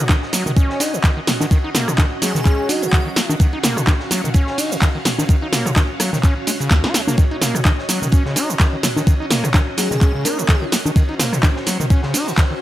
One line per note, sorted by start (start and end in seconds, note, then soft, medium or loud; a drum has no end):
0.00 12.62 C#4 medium
0.00 12.62 F#4 medium
0.00 3.39 D#5 medium
0.09 0.17 D#3 loud
0.09 kick loud
0.09 snare loud
0.09 clap loud
0.09 ride medium
0.09 high conga medium
0.09 cabasa soft
0.22 snare soft
0.33 0.44 F#3 loud
0.33 snare soft
0.33 open hi-hat loud
0.33 ride medium
0.33 cabasa medium
0.46 0.52 D#3 loud
0.46 mid tom medium
0.46 cabasa soft
0.56 0.82 C#4 loud
0.56 kick loud
0.56 ride medium
0.56 cabasa soft
0.70 snare medium
0.80 0.95 D#4 medium
0.80 snare loud
0.80 open hi-hat loud
0.80 ride medium
0.80 high conga soft
0.80 cabasa medium
0.93 0.99 C#3 medium
0.93 cabasa soft
1.04 1.11 D#3 loud
1.04 kick loud
1.04 snare loud
1.04 clap loud
1.04 ride medium
1.04 cabasa soft
1.17 1.20 D#3 medium
1.27 1.32 F#3 medium
1.27 snare medium
1.27 mid tom medium
1.27 open hi-hat loud
1.27 ride medium
1.27 cabasa medium
1.40 1.46 D#3 loud
1.40 snare soft
1.40 high conga medium
1.40 cabasa soft
1.51 1.58 D#3 medium
1.51 kick loud
1.51 ride medium
1.51 cabasa soft
1.64 1.70 D#4 medium
1.75 1.89 A#3 medium
1.75 snare medium
1.75 mid tom medium
1.75 open hi-hat loud
1.75 ride medium
1.75 cabasa medium
1.88 1.94 C#3 medium
1.88 cross-stick medium
1.88 mid tom medium
1.88 ride soft
1.88 cabasa soft
1.98 2.06 D#3 loud
1.98 kick loud
1.98 snare loud
1.98 clap loud
1.98 ride medium
1.98 high conga medium
1.98 cabasa soft
2.22 2.33 F#3 loud
2.22 2.67 G#4 loud
2.22 snare soft
2.22 open hi-hat loud
2.22 ride medium
2.22 cabasa medium
2.35 2.41 D#3 loud
2.35 snare soft
2.35 mid tom medium
2.35 cabasa soft
2.45 2.71 C#4 loud
2.45 kick loud
2.45 clap medium
2.45 ride medium
2.45 cabasa soft
2.69 2.84 D#4 medium
2.69 3.36 F#4 loud
2.69 open hi-hat loud
2.69 ride medium
2.69 high conga soft
2.69 cabasa medium
2.82 2.88 C#3 medium
2.82 ride soft
2.82 cabasa soft
2.92 3.00 D#3 loud
2.92 kick loud
2.92 snare loud
2.92 clap loud
2.92 ride medium
2.92 cabasa soft
3.06 3.09 D#3 medium
3.16 3.21 F#3 medium
3.16 snare medium
3.16 open hi-hat loud
3.16 ride medium
3.16 cabasa medium
3.30 3.35 D#3 loud
3.30 high conga medium
3.30 cabasa soft
3.40 3.47 D#3 medium
3.40 7.17 F5 medium
3.40 kick loud
3.40 ride medium
3.40 cabasa soft
3.53 3.59 D#4 medium
3.53 ride soft
3.63 3.78 A#3 medium
3.63 snare medium
3.63 snare soft
3.63 mid tom medium
3.63 open hi-hat loud
3.63 ride medium
3.63 cabasa medium
3.77 3.83 C#3 medium
3.77 cross-stick medium
3.77 mid tom medium
3.77 ride soft
3.77 cabasa soft
3.87 3.95 D#3 loud
3.87 kick loud
3.87 snare loud
3.87 clap loud
3.87 ride medium
3.87 high conga medium
3.87 cabasa soft
4.00 snare medium
4.11 4.22 F#3 loud
4.11 snare soft
4.11 open hi-hat loud
4.11 ride medium
4.11 cabasa medium
4.24 4.30 D#3 loud
4.24 mid tom medium
4.24 cabasa soft
4.34 4.60 C#4 loud
4.34 kick loud
4.34 ride medium
4.34 cabasa soft
4.47 snare medium
4.58 4.73 D#4 medium
4.58 open hi-hat medium
4.58 open hi-hat loud
4.58 high conga soft
4.58 cabasa medium
4.71 4.77 C#3 medium
4.71 cabasa soft
4.82 4.89 D#3 loud
4.82 kick loud
4.82 snare loud
4.82 clap loud
4.82 ride medium
4.82 cabasa soft
4.95 4.98 D#3 medium
5.05 5.10 F#3 medium
5.05 snare medium
5.05 mid tom medium
5.05 open hi-hat loud
5.05 ride medium
5.05 cabasa medium
5.19 5.24 D#3 loud
5.19 snare soft
5.19 high conga medium
5.19 cabasa soft
5.29 5.36 D#3 medium
5.29 kick loud
5.29 ride medium
5.29 cabasa soft
5.42 5.48 D#4 medium
5.53 5.67 A#3 medium
5.53 snare medium
5.53 mid tom medium
5.53 open hi-hat loud
5.53 ride medium
5.53 cabasa medium
5.66 5.72 C#3 medium
5.66 cross-stick medium
5.66 mid tom medium
5.66 ride soft
5.66 cabasa soft
5.76 5.83 D#3 loud
5.76 kick loud
5.76 snare loud
5.76 clap loud
5.76 ride medium
5.76 high conga medium
5.76 cabasa soft
6.00 6.11 F#3 loud
6.00 cross-stick medium
6.00 snare soft
6.00 open hi-hat loud
6.00 ride medium
6.00 cabasa medium
6.13 6.19 D#3 loud
6.13 snare soft
6.13 mid tom medium
6.13 cabasa soft
6.23 6.34 C#4 loud
6.23 kick loud
6.23 clap medium
6.23 ride medium
6.23 cabasa soft
6.47 6.51 G#3 medium
6.47 open hi-hat loud
6.47 high tom medium
6.47 ride medium
6.47 high conga soft
6.47 cabasa medium
6.60 6.69 C#3 medium
6.60 ride soft
6.60 cabasa soft
6.71 6.85 D#2 loud
6.71 kick loud
6.71 snare soft
6.71 snare medium
6.71 clap loud
6.71 ride medium
6.71 cabasa soft
6.84 6.96 F#4 medium
6.84 snare medium
6.84 ride medium
6.94 7.02 G#3 medium
6.94 snare medium
6.94 open hi-hat loud
6.94 ride soft
6.94 cabasa medium
7.08 7.16 A#3 medium
7.08 snare soft
7.08 mid tom medium
7.08 ride medium
7.08 high conga medium
7.08 cabasa soft
7.18 7.25 D#3 medium
7.18 10.95 D#5 medium
7.18 kick loud
7.18 ride medium
7.18 cabasa soft
7.31 7.37 D#4 medium
7.31 ride soft
7.42 7.56 A#3 medium
7.42 snare soft
7.42 snare medium
7.42 mid tom medium
7.42 open hi-hat loud
7.42 ride medium
7.42 cabasa medium
7.55 7.61 C#3 medium
7.55 cross-stick medium
7.55 mid tom medium
7.55 ride soft
7.55 cabasa soft
7.65 7.72 D#3 loud
7.65 kick loud
7.65 snare loud
7.65 clap loud
7.65 ride medium
7.65 high conga medium
7.65 cabasa soft
7.79 snare soft
7.89 8.00 F#3 loud
7.89 snare soft
7.89 open hi-hat loud
7.89 ride medium
7.89 cabasa medium
8.02 8.08 D#3 loud
8.02 mid tom medium
8.02 cabasa soft
8.12 8.23 C#4 loud
8.12 kick loud
8.12 ride medium
8.12 cabasa soft
8.26 8.38 C#3 loud
8.26 snare medium
8.36 8.51 D#4 medium
8.36 snare loud
8.36 open hi-hat loud
8.36 ride medium
8.36 high conga soft
8.36 cabasa medium
8.49 8.55 C#3 medium
8.49 cabasa soft
8.59 8.67 D#3 loud
8.59 kick loud
8.59 snare loud
8.59 clap loud
8.59 ride medium
8.59 cabasa soft
8.73 8.76 D#3 medium
8.83 8.88 F#3 medium
8.83 snare medium
8.83 mid tom medium
8.83 open hi-hat loud
8.83 ride medium
8.83 cabasa medium
8.96 9.02 D#3 loud
8.96 snare soft
8.96 high conga medium
8.96 cabasa soft
9.07 9.14 D#3 medium
9.07 kick loud
9.07 ride medium
9.07 cabasa soft
9.20 9.26 D#4 medium
9.30 9.45 A#3 medium
9.30 snare medium
9.30 mid tom loud
9.30 open hi-hat loud
9.30 ride medium
9.30 cabasa medium
9.44 9.50 C#3 medium
9.44 cross-stick medium
9.44 mid tom loud
9.44 ride soft
9.44 cabasa soft
9.54 9.61 D#3 loud
9.54 kick loud
9.54 snare loud
9.54 clap loud
9.54 ride medium
9.54 high conga medium
9.54 cabasa soft
9.77 9.89 F#3 loud
9.77 10.23 G#4 loud
9.77 snare soft
9.77 open hi-hat loud
9.77 ride medium
9.77 cabasa medium
9.91 9.97 D#3 loud
9.91 snare soft
9.91 mid tom medium
9.91 cabasa soft
10.01 10.12 C#4 loud
10.01 kick loud
10.01 clap medium
10.01 ride medium
10.01 cabasa soft
10.15 10.26 C#3 loud
10.25 10.40 D#4 medium
10.25 10.62 A#4 medium
10.25 open hi-hat loud
10.25 ride medium
10.25 high conga soft
10.25 cabasa medium
10.38 10.44 C#3 medium
10.38 ride soft
10.38 cabasa soft
10.49 10.56 D#3 loud
10.49 kick loud
10.49 snare loud
10.49 clap loud
10.49 ride loud
10.49 cabasa soft
10.62 10.65 D#3 medium
10.72 10.77 F#3 medium
10.72 snare medium
10.72 open hi-hat loud
10.72 ride medium
10.72 cabasa medium
10.85 10.91 D#3 loud
10.85 high conga medium
10.85 cabasa soft
10.96 11.03 D#3 medium
10.96 12.62 C5 medium
10.96 kick loud
10.96 ride medium
10.96 cabasa soft
11.09 11.15 D#4 medium
11.09 ride soft
11.19 11.34 A#3 medium
11.19 snare medium
11.19 snare soft
11.19 mid tom medium
11.19 open hi-hat loud
11.19 ride medium
11.19 cabasa medium
11.33 11.38 C#3 medium
11.33 cross-stick medium
11.33 mid tom loud
11.33 ride soft
11.33 cabasa soft
11.43 11.50 D#3 loud
11.43 kick loud
11.43 snare loud
11.43 clap loud
11.43 ride medium
11.43 high conga medium
11.43 cabasa soft
11.57 snare medium
11.66 11.78 F#3 loud
11.66 snare soft
11.66 open hi-hat loud
11.66 ride medium
11.66 cabasa medium
11.80 11.86 D#3 loud
11.80 mid tom medium
11.80 cabasa soft
11.90 12.01 C#4 loud
11.90 kick loud
11.90 ride medium
11.90 cabasa soft
12.03 12.15 C#3 loud
12.03 snare medium
12.14 12.29 D#4 medium
12.14 open hi-hat loud
12.14 open hi-hat medium
12.14 high conga soft
12.14 cabasa medium
12.27 12.33 C#3 medium
12.27 cabasa soft
12.38 12.45 D#3 loud
12.38 kick loud
12.38 snare loud
12.38 clap loud
12.38 ride medium
12.38 cabasa soft
12.51 12.54 D#3 medium